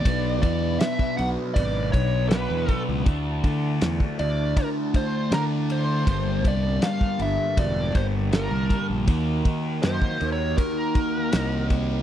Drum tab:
RD |x-x-x-x-x-x-x-x-|x-x-x-x-x-x-x-x-|x-x-x-x-x-x-x-x-|x-x-x-x-x-x-x-x-|
SD |----o-------o---|----o-------o---|----o-------o---|----o-------o---|
BD |o-o--o--o-o---o-|o-o--o--o-o-----|o-o--o--o-o---o-|o-o--o--o-o---o-|